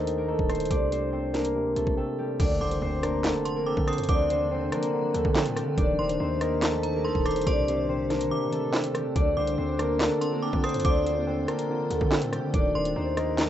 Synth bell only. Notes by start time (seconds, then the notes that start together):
2.61 D6
3.45 C6
3.66 D6
3.88 D#6
4.09 D6
5.99 C6
6.83 A#5
7.05 C6
7.26 D6
7.47 C6
8.31 D6
9.37 D6
10.21 C6
10.42 D6
10.64 D#6
10.85 D6
12.75 C6